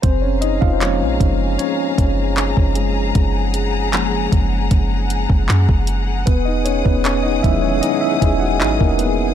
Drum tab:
HH |x-x-x-x-x-x-x-x-|x-x-x-x-x-x-x-x-|x-x-x-x-x-x-x-x-|
CP |----x-------x---|----x-------x---|----x-------x---|
BD |o--o--o---o--o--|o-----o-o--o-o--|o--o--o---o--o--|